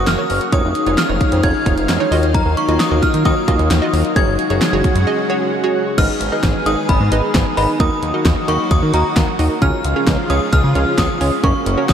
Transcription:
Already playing: analog synth pad C#3 F#3 A#3 F#4, harp F#3 A#3 C#4 F#4 G#4 C#5 F#5
0.07 analog synth bass F#1, synth bell F6, snare, closed hi-hat
0.19 synth pluck F#4 A#4 C#5
0.30 analog synth bass F#1, harp F#6, open hi-hat
0.41 harp C#6, closed hi-hat
0.52 analog synth bass F1, analog synth pad D#3 G#3 C#4 F5, harp G#3, synth pluck D#4 F4 C#5, synth bell D#6, kick, closed hi-hat
0.64 analog synth bass F1, harp D#4
0.75 closed hi-hat
0.87 analog synth bass F1, harp D#4, synth pluck D#4 F4 C#5, closed hi-hat
0.98 harp F4, synth bell F6, snare, closed hi-hat
1.09 analog synth bass F1, synth pluck D#4 F4 C#5
1.21 harp F4, kick, closed hi-hat
1.32 analog synth bass F2, harp C#4, closed hi-hat
1.43 analog synth bass F1, synth pluck D#4 F4 C#5, synth bell G#6, kick, closed hi-hat
1.55 harp D#4
1.66 analog synth bass F1, synth pluck D#4 F4 C#5, harp G#4, kick, closed hi-hat
1.78 analog synth bass F1, harp D#4, closed hi-hat
1.89 analog synth bass F1, snare, closed hi-hat
2.00 synth pluck D#4 F4 C#5
2.11 analog synth bass D#2, analog synth pad F#3 A#3, synth pluck F4 F#4 D#5, harp F5, open hi-hat
2.23 harp D#5, closed hi-hat
2.34 harp F#3, synth bell A#5, kick, closed hi-hat
2.46 analog synth bass D#2, harp D#4
2.57 synth bell C#6, closed hi-hat
2.68 analog synth bass D#2, harp D#4, synth pluck F4 F#4 D#5, closed hi-hat
2.80 harp F4, synth bell D#6, snare, closed hi-hat
2.91 analog synth bass D#2, synth pluck F4 F#4 D#5
3.02 harp F4, synth bell F6, kick, closed hi-hat
3.14 analog synth bass D#3, harp A#3, closed hi-hat
3.25 analog synth bass D#2, synth pluck F4 F#4 D#5, synth bell D#6, kick, closed hi-hat
3.37 harp D#4
3.48 analog synth bass D#2, synth pluck F4 F#4 D#5, harp F#4, kick, closed hi-hat
3.59 analog synth bass D#2, harp D#4, closed hi-hat
3.71 analog synth bass D#2, snare, closed hi-hat
3.82 synth pluck F4 F#4 D#5
3.93 analog synth bass D#2, harp F5, open hi-hat
4.05 harp D#5, closed hi-hat
4.16 analog synth bass F#1, analog synth pad C#3 G#3 F#4, harp F#3, synth pluck F#4 G#4 C#5, synth bell G#6, kick, closed hi-hat
4.27 analog synth bass F#1, harp C#4
4.39 closed hi-hat
4.50 analog synth bass F#1, harp C#4, synth pluck F#4 G#4 C#5, closed hi-hat
4.61 harp F#4, snare, closed hi-hat
4.73 analog synth bass F#1, synth pluck F#4 G#4 C#5
4.84 harp F#4, kick, closed hi-hat
4.96 analog synth bass F#2, harp G#3, closed hi-hat
5.07 synth pluck F#4 G#4 D#5
5.18 harp C#4
5.30 synth pluck F#4 G#4 C#5, harp F#5
5.41 harp C#4
5.64 synth pluck F#4 G#4 C#5
5.75 harp F#6
5.87 harp C#6
5.98 analog synth bass G#1, analog synth pad D#3 G#3 B3 G#4, synth pluck D#4 G#4 B4 D#5, synth bell F6, kick, closed hi-hat, crash
6.20 analog synth bass G#1, closed hi-hat
6.32 synth pluck D#4 G#4 B4 D#5
6.43 analog synth bass G#1, kick, snare, closed hi-hat
6.66 analog synth bass G#1, synth pluck D#4 G#4 B4 D#5, synth bell D#6, closed hi-hat
6.89 analog synth bass G#1, synth bell B5, kick, closed hi-hat
7.00 analog synth bass G#2
7.12 analog synth bass G#1, synth pluck D#4 G#4 B4 D#5, closed hi-hat
7.34 analog synth bass G#1, kick, snare, closed hi-hat
7.57 analog synth bass G#1, synth pluck D#4 G#4 B4 D#5, synth bell B5, open hi-hat
7.80 analog synth bass D#2, analog synth pad F#3 A#3 F#4, synth pluck D#4 F#4 A#4 D#5, synth bell D#6, kick, closed hi-hat
8.03 analog synth bass D#2, closed hi-hat
8.14 synth pluck D#4 F#4 A#4 D#5
8.25 analog synth bass D#2, kick, snare, closed hi-hat
8.48 analog synth bass D#2, synth pluck D#4 F#4 A#4 D#5, synth bell C#6, closed hi-hat
8.71 analog synth bass D#2, synth bell D#6, kick, closed hi-hat
8.82 analog synth bass D#3
8.94 analog synth bass D#2, synth pluck D#4 F#4 A#4 D#5, synth bell A#5, closed hi-hat
9.16 analog synth bass D#2, kick, snare, closed hi-hat
9.39 analog synth bass D#2, synth pluck D#4 F#4 A#4 D#5, open hi-hat
9.62 analog synth bass C#2, analog synth pad C#3 F3 G#3 F4, synth pluck C#4 F4 G#4 C#5, synth bell F6, kick, closed hi-hat
9.84 analog synth bass C#2, closed hi-hat
9.96 synth pluck C#4 F4 G#4 C#5
10.07 analog synth bass C#2, kick, snare, closed hi-hat
10.30 analog synth bass C#2, synth pluck C#4 F4 G#4 C#5, synth bell D#6, closed hi-hat
10.53 analog synth bass C#2, synth bell F6, kick, closed hi-hat
10.64 analog synth bass C#3
10.75 analog synth bass C#2, synth pluck C#4 F4 G#4 C#5, closed hi-hat
10.98 analog synth bass C#2, synth bell D#6, kick, snare, closed hi-hat
11.21 analog synth bass C#2, synth pluck C#4 F4 G#4 C#5, open hi-hat
11.44 analog synth bass F#1, analog synth pad F#3 A#3 F#4, synth pluck C#4 F#4 A#4 C#5, synth bell C#6, kick, closed hi-hat
11.66 analog synth bass F#1, closed hi-hat
11.78 synth pluck C#4 F#4 A#4 C#5
11.89 analog synth bass F#1, synth bell D#6, kick, snare, closed hi-hat

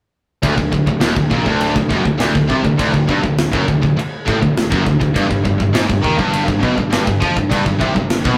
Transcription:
0.43 picked electric bass D1, distorted electric guitar D2, kick, china
0.58 picked electric bass D1, distorted electric guitar D2, kick
0.73 picked electric bass D1, distorted electric guitar D2, kick
0.87 picked electric bass D1, distorted electric guitar D2, kick
1.01 picked electric bass D#1, distorted electric guitar D#2, snare, china
1.16 picked electric bass D1, distorted electric guitar D2, kick
1.31 picked electric bass A#1, distorted electric guitar A#2, kick
1.45 picked electric bass D1, distorted electric guitar D2, kick
1.61 china
1.76 picked electric bass D1, distorted electric guitar D2, kick
1.89 picked electric bass F#1, distorted electric guitar F#2, kick
1.93 distorted electric guitar F#2
2.03 picked electric bass D1, distorted electric guitar D2, kick
2.18 picked electric bass D1, distorted electric guitar D2, snare, china
2.23 distorted electric guitar D2
2.34 picked electric bass D1, distorted electric guitar D2, kick
2.49 picked electric bass C2, distorted electric guitar C3, kick
2.64 picked electric bass D1, distorted electric guitar D2, kick
2.79 picked electric bass D1, distorted electric guitar D2, kick, china
2.94 picked electric bass D1, distorted electric guitar D2, kick
3.08 picked electric bass G1, distorted electric guitar G2, kick
3.23 picked electric bass D1, distorted electric guitar D2, kick
3.38 snare, china
3.53 picked electric bass F#1, distorted electric guitar F#2, kick
3.68 picked electric bass D1, distorted electric guitar D2, kick
3.82 picked electric bass D1, distorted electric guitar D2, kick
3.96 muted picked electric bass stroke, muted distorted electric guitar stroke, china
4.26 picked electric bass A1, distorted electric guitar A2, kick
4.41 picked electric bass D1, distorted electric guitar D2, kick
4.57 snare, china
4.72 picked electric bass F#1, distorted electric guitar F#2, kick
4.87 picked electric bass D1, distorted electric guitar D2, kick
5.00 picked electric bass D1, distorted electric guitar D2, kick
5.16 picked electric bass G1, distorted electric guitar G2, kick, china
5.30 picked electric bass G1, distorted electric guitar G2, kick
5.45 picked electric bass G1, distorted electric guitar G2, kick
5.60 picked electric bass G1, distorted electric guitar G2, kick
5.74 picked electric bass G#1, distorted electric guitar G#2, snare, china
5.90 picked electric bass G1, distorted electric guitar G2, kick
6.04 picked electric bass D#2, distorted electric guitar D#3, kick
6.15 picked electric bass G1, distorted electric guitar G2, kick
6.20 distorted electric guitar G2
6.33 china
6.46 picked electric bass G1, distorted electric guitar G2, kick
6.50 distorted electric guitar G2
6.60 picked electric bass B1, distorted electric guitar B2, kick
6.64 distorted electric guitar B2
6.78 picked electric bass G1, distorted electric guitar G2, kick
6.92 picked electric bass G1, distorted electric guitar G2, snare, china
7.07 picked electric bass G1, distorted electric guitar G2, kick
7.22 picked electric bass F2, distorted electric guitar F3, kick
7.37 picked electric bass G1, distorted electric guitar G2, kick
7.51 picked electric bass G1, distorted electric guitar G2, kick, china
7.66 picked electric bass G1, distorted electric guitar G2, kick
7.81 picked electric bass C2, distorted electric guitar C3, kick
7.96 picked electric bass G1, distorted electric guitar G2, kick
8.10 snare, china
8.24 picked electric bass B1, distorted electric guitar B2, kick

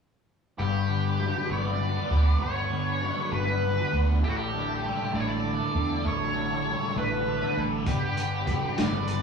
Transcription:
0.57 fingered electric bass G1, distorted electric guitar G2, transistor combo organ B3 D4 B4 F#5, lead electric guitar G4
0.89 distorted electric guitar D3
1.19 distorted electric guitar F#3
1.48 fingered electric bass G1, distorted electric guitar B3, lead electric guitar D5
1.80 distorted electric guitar D3
2.10 fingered electric bass D2, distorted electric guitar B3
2.41 fingered electric bass G1, distorted electric guitar G2, lead electric guitar C#5
2.71 distorted electric guitar D3
3.01 distorted electric guitar F#3
3.31 fingered electric bass G1, distorted electric guitar B3, lead electric guitar B4
3.62 distorted electric guitar D3
3.92 fingered electric bass D2, distorted electric guitar B3
4.23 fingered electric bass A1, distorted electric guitar A2, transistor combo organ A3 D4 E4 A4, lead electric guitar G4
4.29 lead electric guitar F#4
4.37 lead electric guitar G4
4.53 distorted electric guitar D3
4.85 distorted electric guitar G3
5.14 fingered electric bass A1, distorted electric guitar D4, lead electric guitar D5
5.20 lead electric guitar C#5
5.29 lead electric guitar D5
5.45 distorted electric guitar D3
5.75 fingered electric bass E2, distorted electric guitar D4
6.04 fingered electric bass A1, distorted electric guitar A2, lead electric guitar C#5
6.35 distorted electric guitar D3
6.65 distorted electric guitar G3
6.95 fingered electric bass A1, distorted electric guitar D4, lead electric guitar B4
7.26 distorted electric guitar D3
7.56 fingered electric bass A1, distorted electric guitar D4
7.86 fingered electric bass G1, distorted electric guitar G2, transistor combo organ B3 B4 F#5, lead electric guitar G4, kick, closed hi-hat
8.17 distorted electric guitar D3, closed hi-hat
8.46 distorted electric guitar F#3, kick, closed hi-hat
8.77 fingered electric bass G1, distorted electric guitar B3, lead electric guitar D5, snare, closed hi-hat
9.08 distorted electric guitar D3, closed hi-hat

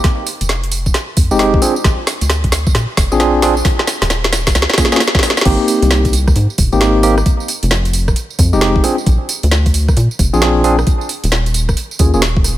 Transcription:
0.04 kick, snare, closed hi-hat, tambourine
0.27 open hi-hat, tambourine
0.41 analog synth bass F1, closed hi-hat, tambourine
0.49 snare, closed hi-hat, tambourine
0.63 closed hi-hat
0.72 open hi-hat, tambourine
0.86 kick, tambourine
0.94 snare, closed hi-hat, tambourine
1.17 analog synth bass F2, kick, open hi-hat, tambourine
1.31 analog synth bass F1, tine electric piano G#3 C4 D#4 G4, tambourine
1.39 tine electric piano G#3 C4 D#4 G4, snare, closed hi-hat
1.54 kick
1.62 tine electric piano C4 D4 F4 G#4, open hi-hat, tambourine
1.76 tambourine
1.84 analog synth bass A#1, kick, snare, closed hi-hat, tambourine
2.07 snare, open hi-hat, tambourine
2.21 analog synth bass D2, closed hi-hat, tambourine
2.30 snare, closed hi-hat, tambourine
2.44 kick, closed hi-hat
2.52 snare, open hi-hat, tambourine
2.67 kick, tambourine
2.75 analog synth bass A#2, snare, closed hi-hat, tambourine
2.97 analog synth bass F1, kick, snare, open hi-hat, tambourine
3.12 analog synth bass A#1, tine electric piano C4 D4 F4 G#4, tambourine
3.20 tine electric piano C4 D4 F4 G#4, snare, closed hi-hat, tambourine
3.42 tine electric piano C4 D4 F4 G#4, snare, open hi-hat, tambourine
3.57 tambourine
3.65 kick, snare, closed hi-hat, tambourine
3.79 snare
3.87 snare, open hi-hat, tambourine
4.02 analog synth bass D#1, snare, closed hi-hat, tambourine
4.10 snare, closed hi-hat, tambourine
4.24 snare, closed hi-hat
4.33 snare, open hi-hat, tambourine
4.47 kick, snare, open hi-hat, tambourine
4.55 analog synth bass C#2, snare, closed hi-hat, tambourine
4.62 snare
4.70 snare
4.74 snare
4.78 tine electric piano A#3 C#4 F4 G#4, kick, snare, open hi-hat, tambourine
4.85 snare
4.92 tine electric piano A#3 C#4 F4 G#4, snare, tambourine
4.96 snare
5.00 snare, closed hi-hat, tambourine
5.08 snare
5.15 kick, snare
5.19 snare
5.23 snare, open hi-hat, tambourine
5.30 snare
5.37 snare, closed hi-hat, tambourine
5.41 tine electric piano A#3, snare
5.45 analog synth bass G#1, tine electric piano C4 D#4 G4, kick, closed hi-hat, crash, tambourine
5.68 open hi-hat, tambourine
5.82 analog synth bass C2, closed hi-hat, tambourine
5.91 snare, closed hi-hat, tambourine
6.05 kick, closed hi-hat, tambourine
6.13 open hi-hat, tambourine
6.27 kick, cross-stick, tambourine
6.36 analog synth bass G#2, closed hi-hat, tambourine
6.50 tambourine
6.58 analog synth bass D#1, kick, open hi-hat, tambourine
6.72 analog synth bass G#1, tine electric piano A#3 C4 D#4 G4, tambourine
6.81 tine electric piano A#3 C4 D#4 G4, snare, closed hi-hat, tambourine
7.03 tine electric piano A#3 C4 D#4 G4, open hi-hat, tambourine
7.18 cross-stick, tambourine
7.26 kick, closed hi-hat, tambourine
7.40 tambourine
7.48 open hi-hat, tambourine
7.63 analog synth bass F1, closed hi-hat, tambourine
7.71 snare, closed hi-hat, tambourine
7.85 closed hi-hat, tambourine
7.93 open hi-hat, tambourine
8.08 kick, cross-stick, tambourine
8.16 closed hi-hat, tambourine
8.30 tambourine
8.39 analog synth bass F2, kick, open hi-hat, tambourine
8.53 analog synth bass F1, tine electric piano G#3 C4 D#4 G4, tambourine
8.61 tine electric piano G#3 C4 D#4 G4, snare, closed hi-hat, tambourine
8.76 kick
8.84 tine electric piano C4 D4 F4 G#4, cross-stick, open hi-hat, tambourine
8.98 tambourine
9.06 analog synth bass A#1, kick, closed hi-hat, tambourine
9.29 open hi-hat, tambourine
9.43 analog synth bass D2, closed hi-hat, tambourine
9.51 snare, closed hi-hat, tambourine
9.66 kick, closed hi-hat, tambourine
9.74 open hi-hat, tambourine
9.88 kick, cross-stick, tambourine
9.97 analog synth bass A#2, closed hi-hat, tambourine
10.11 tambourine
10.19 analog synth bass F1, kick, open hi-hat, tambourine
10.33 analog synth bass A#1, tine electric piano C4 D4 F4 G#4, tambourine
10.41 tine electric piano C4 D4 F4 G#4, snare, closed hi-hat, tambourine
10.64 tine electric piano C4 D4 F4 G#4, open hi-hat, tambourine
10.79 cross-stick, tambourine
10.87 kick, closed hi-hat, tambourine
11.01 tambourine
11.09 open hi-hat, tambourine
11.24 analog synth bass D#1, closed hi-hat, tambourine
11.32 snare, closed hi-hat, tambourine
11.46 closed hi-hat, tambourine
11.54 open hi-hat, tambourine
11.69 kick, cross-stick, tambourine
11.77 closed hi-hat, tambourine
11.91 tambourine
11.99 analog synth bass D#2, tine electric piano A#3 C#4 F4 G#4, kick, open hi-hat, tambourine
12.14 analog synth bass D#1, tine electric piano A#3 C#4 F4 G#4, tambourine
12.22 snare, closed hi-hat, tambourine
12.37 kick
12.44 cross-stick, open hi-hat, tambourine

